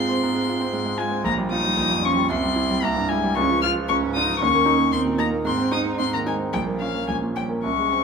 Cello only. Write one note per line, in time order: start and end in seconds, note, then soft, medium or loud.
0.00 0.96 C4 medium
0.99 1.27 G#3 medium
1.25 1.53 A#3 medium
1.52 2.04 D#4 medium
2.04 2.30 C#4 medium
2.31 2.85 C4 medium
2.83 3.11 A#3 medium
3.10 3.36 G#3 medium
3.37 3.62 C#4 medium
3.63 3.71 F4 medium
3.88 4.17 C#4 medium
4.16 4.43 D#4 medium
4.42 4.93 C#4 medium
4.93 5.21 C4 medium
5.19 5.45 A#3 medium
5.45 5.74 C4 medium
5.73 6.00 D#4 medium
6.00 6.05 C4 medium
6.13 6.28 A#3 medium
6.27 6.53 G#3 medium
6.53 6.82 G3 medium
6.81 7.08 F3 medium
7.09 7.17 G#3 medium
7.38 7.65 G3 soft
7.65 8.04 C#4 medium